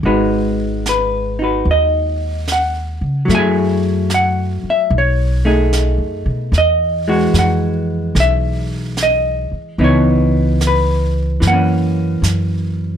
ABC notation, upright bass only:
X:1
M:4/4
L:1/8
Q:"Swing" 1/4=74
K:G#m
V:1 name="Upright bass" clef=bass
G,,,4 D,,3 C, | F,,3 z B,,,2- (3B,,, F,, B,, | E,,2 ^E,,2 B,,,3 z | C,,4 F,,2 F,,2 |]